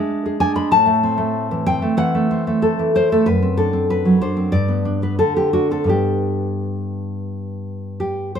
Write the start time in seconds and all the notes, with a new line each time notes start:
Already playing: G#3 D4 G#4 E5
0.26 G#4
0.40 D4 G#5
0.55 G#3 B5
0.71 A2 A5
0.86 A3
1.03 C4
1.18 A3
1.51 E3
1.66 C4 G5
1.82 A3
1.97 E3 F#5
2.15 A3
2.31 C4
2.47 A3
2.62 A4
2.79 E3
2.95 C4 C5
3.12 A3 A4
3.26 F#2 B4
3.43 C4
3.57 D4 A4
3.73 C4
3.90 B4
4.05 F#3
4.21 D4 C5
4.37 C4
4.52 G2 D5
4.68 B3
4.85 D4
5.02 B3 B4
5.19 D3 A4
5.36 C4 G4
5.53 D4 F#4
5.71 C4 A4
5.84 G2 B3 D4
5.89 G4
8.00 G4
8.35 C5